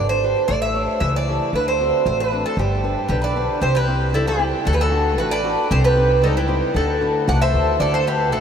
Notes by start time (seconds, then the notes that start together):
Already playing: G#1 D3 D4 G4 B4
0.09 C5
0.23 D4 G4 B4
0.48 A1 A3 D5
0.62 E5
0.75 G4 A4 C#5
1.00 C#2 E3 E5
1.16 D5
1.27 G4 A4 C#5
1.53 D2 D3 B4
1.68 C5
1.80 C4 D4 F#4
2.06 A1 A3 C5
2.20 B4
2.32 C4 D4 F#4
2.46 A4
2.57 G1 G3 G4
2.84 D4 G4 B4
3.09 B1 D3 G4 B4
3.22 B4 D5
3.36 D4 G4 B4
3.61 C2 C3 G4 C5
3.75 G4 B4
3.87 C4 E4 G4
4.13 C#2 G3 E4 A4
4.27 E4 G4
4.39 C4 E4 G4
4.65 D2 D3 F#4 A4
4.73 G4 B4
4.81 F#4 A4
4.91 A3 D4 F#4
5.18 A1 A3 F#4 B4
5.31 B4 D5
5.44 A3 D4 F#4
5.71 C2 C3 G4 C5
5.84 G4 B4
5.96 C4 D#4 G4
6.22 C#2 G3 D#4 A4
6.37 E4 G4
6.48 C4 D#4 G4
6.74 D2 D3 F#4 A4
7.01 A3 D4 F#4
7.28 C2 A3 D5 F#5
7.42 C5 E5
7.54 D2 A3 D4 F#4
7.80 D2 D3 A4 D5
7.94 A4 C5
8.07 A3 D4 F#4 G4 B4
8.32 A1 A3 F#4 A4